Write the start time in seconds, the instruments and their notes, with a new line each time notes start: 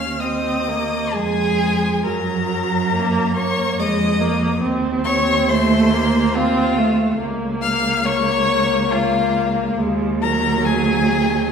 Already playing: cello D#2, viola C#4, violin F5 F6
0.20 viola C4, violin D#5 D#6
0.68 viola A#3
1.13 cello F2, viola G#3, violin G#4 G#5
2.03 cello F#2, viola F#3, violin A#4 A#5
2.94 viola A#3
3.36 viola A#3, violin C#5 C#6
3.78 cello F2, viola G#3, violin D#5 D#6
4.20 viola A#3
4.61 cello D#2, viola C4
5.04 violin C#5 C#6
5.49 viola A3, violin C5 C6
5.93 viola A#3
6.35 viola C4, violin F4 F5
6.78 viola A3
7.19 cello C#2, viola A#3
7.62 violin F5 F6
8.05 violin C#5 C#6
8.92 violin F4 F5
9.78 cello D#2, viola G#3
10.21 viola F#3, violin A#4 A#5
10.65 violin G#4 G#5